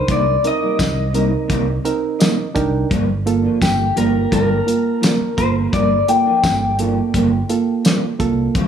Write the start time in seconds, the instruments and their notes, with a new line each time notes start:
Already playing: reed electric piano D4 D#4 A#4
0.07 fingered electric bass C2, clean electric guitar C3 G3 A#3 D#4, kick, closed hi-hat
0.12 clean electric guitar D5
0.25 muted clean electric guitar stroke
0.42 reed electric piano C4 D#4 A#4, muted clean electric guitar stroke, closed hi-hat
0.47 clean electric guitar D#5
0.60 clean electric guitar G3 A#3 D#4
0.78 fingered electric bass C2, muted clean electric guitar stroke, kick, snare, closed hi-hat, tambourine
1.13 clean electric guitar C3 G3 A#3 D#4, reed electric piano C4 D#4 A#4, closed hi-hat
1.31 muted clean electric guitar stroke
1.48 fingered electric bass C2, clean electric guitar C3 G3 A#3 D#4, kick, closed hi-hat
1.67 muted clean electric guitar stroke
1.84 reed electric piano C4 D#4 A#4, muted clean electric guitar stroke, closed hi-hat
2.19 clean electric guitar C3 G3 A#3 D#4, reed electric piano D#5, snare, closed hi-hat, tambourine
2.38 muted clean electric guitar stroke
2.55 fingered electric bass C2, reed electric piano D4 D#4 A#4 G5, muted clean electric guitar stroke, kick, closed hi-hat
2.90 fingered electric bass G1, clean electric guitar G2 F3 A#3 D4, kick, closed hi-hat
3.08 muted clean electric guitar stroke
3.25 reed electric piano A#3 F4 A4, muted clean electric guitar stroke, closed hi-hat
3.43 clean electric guitar F3 A#3 D4
3.62 fingered electric bass G1, clean electric guitar G4, kick, snare, closed hi-hat, tambourine
3.96 fingered electric bass G1, clean electric guitar G2 F3 A#3 D4 A#4, reed electric piano A#3 F4 A#4, closed hi-hat
4.14 muted clean electric guitar stroke
4.31 fingered electric bass G1, clean electric guitar G2 F3 A#3 D4 A#4, kick, closed hi-hat
4.49 muted clean electric guitar stroke
4.66 reed electric piano A#3 F4 A#4, muted clean electric guitar stroke, closed hi-hat
5.01 clean electric guitar G2 F3 A#3 D4, snare, closed hi-hat, tambourine
5.19 muted clean electric guitar stroke, muted fingered electric bass stroke
5.37 fingered electric bass G1, reed electric piano A#3 F4 A4, clean electric guitar C5, muted clean electric guitar stroke, kick, closed hi-hat
5.73 fingered electric bass G1, clean electric guitar G2 F3 A#3 D4 D5, kick, closed hi-hat
5.90 muted clean electric guitar stroke
6.08 reed electric piano A#3 F4 A4, clean electric guitar G5, muted clean electric guitar stroke, closed hi-hat
6.26 clean electric guitar F3 A#3 D4
6.44 fingered electric bass G1, kick, snare, closed hi-hat, tambourine
6.78 clean electric guitar G2 F3 A#3 D4, reed electric piano A#3 F4 A4, closed hi-hat
6.97 muted clean electric guitar stroke
7.14 fingered electric bass G1, clean electric guitar G2 F3 A#3 D4, kick, closed hi-hat
7.32 muted clean electric guitar stroke
7.49 reed electric piano A#3 F4 A4, muted clean electric guitar stroke, closed hi-hat
7.84 clean electric guitar G2 F3 A#3 D4, snare, closed hi-hat, tambourine
8.03 muted clean electric guitar stroke
8.19 fingered electric bass C2, reed electric piano A#3 F4 A4, muted clean electric guitar stroke, kick, closed hi-hat
8.55 fingered electric bass D2, clean electric guitar D3 F#3 C4 F4, kick, closed hi-hat